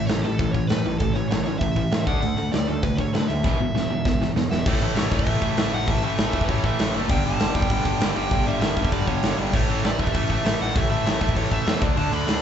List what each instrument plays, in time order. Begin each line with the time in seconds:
0.07 picked electric bass A1, overdriven electric guitar A2 E3, lead electric guitar C#5, snare, open hi-hat
0.22 picked electric bass A1, overdriven electric guitar A2 E3, lead electric guitar A4, open hi-hat
0.39 picked electric bass A1, overdriven electric guitar A2 E3, kick, open hi-hat
0.52 overdriven electric guitar A2, lead electric guitar C#5, kick, open hi-hat
0.56 overdriven electric guitar E3
0.67 overdriven electric guitar A2 E3, picked electric bass A2, lead electric guitar B4, snare, open hi-hat
0.85 picked electric bass A1, overdriven electric guitar A2 E3, open hi-hat
0.98 picked electric bass A1, overdriven electric guitar A2 E3, lead electric guitar A4, kick, open hi-hat
1.13 picked electric bass A1, overdriven electric guitar A2 E3, lead electric guitar C#5, open hi-hat
1.28 picked electric bass A1, overdriven electric guitar A2 E3, lead electric guitar C#5, snare, open hi-hat
1.44 picked electric bass A1, overdriven electric guitar A2 E3, lead electric guitar C#5, open hi-hat
1.59 picked electric bass A1, overdriven electric guitar A2 E3, lead electric guitar E5, kick, open hi-hat
1.76 overdriven electric guitar A2 E3, kick, open hi-hat
1.92 picked electric bass A2, overdriven electric guitar A2 E3, snare, open hi-hat
2.00 lead electric guitar E5
2.07 picked electric bass D2, overdriven electric guitar D3 A3 D4, lead electric guitar F#5, kick, open hi-hat
2.22 picked electric bass D2, overdriven electric guitar D3 A3, open hi-hat
2.38 picked electric bass D2, overdriven electric guitar D3 A3, open hi-hat
2.52 picked electric bass D2, overdriven electric guitar D3 A3, lead electric guitar D5, snare, open hi-hat
2.68 picked electric bass D2, overdriven electric guitar D3 A3, lead electric guitar A4, open hi-hat
2.83 picked electric bass D2, overdriven electric guitar D3 A3, lead electric guitar B4, kick, open hi-hat
2.95 lead electric guitar B4 C#5, kick, open hi-hat
3.00 overdriven electric guitar D3 A3
3.13 picked electric bass D3, overdriven electric guitar D3 A3, lead electric guitar B4, snare, open hi-hat
3.28 picked electric bass D2, overdriven electric guitar D3 A3, lead electric guitar E5, open hi-hat
3.44 picked electric bass E1, overdriven electric guitar E2 B2 E3, kick, snare
3.60 picked electric bass E1, overdriven electric guitar E2 B2
3.75 picked electric bass E1, overdriven electric guitar E2 B2, snare
3.90 picked electric bass E1, overdriven electric guitar E2 B2
4.05 picked electric bass E1, overdriven electric guitar E2 B2, kick, snare
4.22 overdriven electric guitar E2 B2, snare
4.36 picked electric bass E2, overdriven electric guitar E2 B2, snare
4.51 picked electric bass E1, overdriven electric guitar E2 B2, lead electric guitar E5, snare
4.66 picked electric bass A1, overdriven electric guitar A2 E3 A3, lead electric guitar C#5, kick, crash
4.81 picked electric bass A1, overdriven electric guitar A2 E3 A3, crash
4.96 picked electric bass A1, overdriven electric guitar A2 E3 A3, snare, crash
5.11 picked electric bass A1, overdriven electric guitar A2 E3 A3, lead electric guitar E5, kick, crash
5.19 kick
5.26 picked electric bass A1, overdriven electric guitar A2 E3 A3, kick, crash
5.41 picked electric bass A1, overdriven electric guitar A2 E3 A3, kick, crash
5.57 picked electric bass A1, overdriven electric guitar A2 E3 A3, snare, crash
5.73 picked electric bass A1, overdriven electric guitar A2 E3 A3, lead electric guitar F#5, crash
5.88 picked electric bass A1, overdriven electric guitar A2 E3 A3, lead electric guitar E5, kick, crash
6.03 overdriven electric guitar A2 E3 A3, lead electric guitar E5, crash
6.18 picked electric bass A1, overdriven electric guitar A2 E3 A3, snare, crash
6.33 picked electric bass A1, overdriven electric guitar A2 E3 A3, lead electric guitar E5, kick, crash
6.41 lead electric guitar B4, kick
6.48 picked electric bass A1, overdriven electric guitar A2 E3 A3, lead electric guitar C#5, kick, crash
6.63 picked electric bass A1, overdriven electric guitar A2 E3 A3, lead electric guitar E5, kick, crash
6.79 picked electric bass A1, overdriven electric guitar A2 E3 A3, snare, crash
6.94 picked electric bass F#1, overdriven electric guitar A2 E3 A3, crash
7.09 picked electric bass G1, overdriven electric guitar G2 D3 G3, lead electric guitar G5, kick, crash
7.25 picked electric bass G1, overdriven electric guitar G2 D3 G3, lead electric guitar A5, crash
7.40 picked electric bass G1, overdriven electric guitar G2 D3 G3, snare, crash
7.55 picked electric bass G1, overdriven electric guitar G2 D3 G3, lead electric guitar G5, kick, crash
7.62 kick
7.70 picked electric bass G1, overdriven electric guitar G2 D3 G3, kick, crash
7.85 picked electric bass G1, overdriven electric guitar G2 D3 G3, kick, crash
8.00 picked electric bass G1, overdriven electric guitar G2 D3 G3, snare, crash
8.16 picked electric bass G1, overdriven electric guitar G2 D3 G3, lead electric guitar G5, crash
8.31 picked electric bass G1, overdriven electric guitar G2 D3 G3, kick, crash
8.46 overdriven electric guitar G2 D3 G3, lead electric guitar E5, crash
8.61 picked electric bass G1, overdriven electric guitar G2 D3 G3, snare, crash
8.77 picked electric bass G1, overdriven electric guitar G2 D3 G3, kick, crash
8.85 kick
8.92 picked electric bass G1, overdriven electric guitar G2 D3 G3, lead electric guitar D5, kick, crash
9.07 picked electric bass G1, overdriven electric guitar G2 D3 G3, lead electric guitar C#5, kick, crash
9.23 picked electric bass G1, overdriven electric guitar G2 D3 G3, snare, crash
9.38 picked electric bass G1, overdriven electric guitar G2 D3 G3, crash
9.53 picked electric bass A1, overdriven electric guitar A2 E3 A3, lead electric guitar C#5, kick, crash
9.69 picked electric bass A1, overdriven electric guitar A2 E3 A3, crash
9.84 picked electric bass A1, overdriven electric guitar A2 E3 A3, lead electric guitar D5, snare, crash
9.99 picked electric bass A1, overdriven electric guitar A2 E3 A3, lead electric guitar E5, kick, crash
10.07 kick
10.15 picked electric bass A1, overdriven electric guitar A2 E3 A3, kick, crash
10.30 picked electric bass A1, overdriven electric guitar A2 E3 A3, lead electric guitar E5, kick, crash
10.44 picked electric bass A1, overdriven electric guitar A2 E3 A3, snare, crash
10.60 picked electric bass A1, overdriven electric guitar A2 E3 A3, lead electric guitar F#5, crash
10.76 picked electric bass A1, overdriven electric guitar A2 E3 A3, lead electric guitar E5, kick, crash
10.91 overdriven electric guitar A2 E3 A3, lead electric guitar E5, crash
11.06 picked electric bass A1, overdriven electric guitar A2 E3 A3, snare, crash
11.20 picked electric bass A1, overdriven electric guitar A2 E3 A3, lead electric guitar E5, kick, crash
11.29 kick
11.36 picked electric bass A1, overdriven electric guitar A2 E3 A3, lead electric guitar C#5, kick, crash
11.51 picked electric bass A1, overdriven electric guitar A2 E3 A3, lead electric guitar E5, kick, crash
11.66 picked electric bass E2, overdriven electric guitar A2 E3 A3, snare, crash
11.81 picked electric bass D2, overdriven electric guitar D3 A3 D4, kick, crash
11.97 picked electric bass D2, overdriven electric guitar D3 A3 D4, lead electric guitar A5, crash
12.12 picked electric bass D2, overdriven electric guitar D3 A3 D4, lead electric guitar B5, crash
12.27 picked electric bass D2, overdriven electric guitar D3 A3 D4, snare, crash